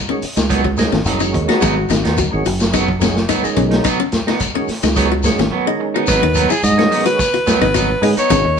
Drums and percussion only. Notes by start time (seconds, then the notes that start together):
0.22 open hi-hat, shekere
0.36 snare, closed hi-hat, shekere
0.50 kick, closed hi-hat, shekere
0.65 kick
0.77 snare, closed hi-hat, shekere
0.92 snare, shekere
1.05 closed hi-hat, shekere
1.20 shekere
1.33 kick, closed hi-hat, shekere
1.49 snare, closed hi-hat
1.61 kick, closed hi-hat, shekere
1.89 snare, closed hi-hat, shekere
2.04 snare, closed hi-hat, shekere
2.17 kick, closed hi-hat, shekere
2.45 open hi-hat, shekere
2.60 snare, closed hi-hat, shekere
2.74 kick, closed hi-hat, shekere
2.88 kick
3.01 snare, closed hi-hat, shekere
3.16 snare, shekere
3.29 snare, closed hi-hat, shekere
3.44 shekere
3.56 kick, closed hi-hat, shekere
3.71 snare, closed hi-hat
3.84 kick, closed hi-hat, shekere
4.12 snare, closed hi-hat, shekere
4.27 snare, shekere
4.40 kick, closed hi-hat, shekere
4.68 snare, open hi-hat, shekere
4.83 snare, closed hi-hat, shekere
4.96 kick, closed hi-hat, shekere
5.23 snare, closed hi-hat, shekere
5.38 snare, shekere
6.07 kick, closed hi-hat, shekere
6.34 closed hi-hat, shekere
6.49 shekere
6.63 closed hi-hat, shekere
6.79 snare, closed hi-hat
6.92 open hi-hat, shekere
7.07 closed hi-hat, shekere
7.19 kick, closed hi-hat, shekere
7.34 closed hi-hat
7.47 snare, closed hi-hat, shekere
7.62 kick, closed hi-hat, shekere
7.74 closed hi-hat, shekere
8.03 open hi-hat, shekere
8.17 closed hi-hat, shekere
8.30 kick, closed hi-hat, shekere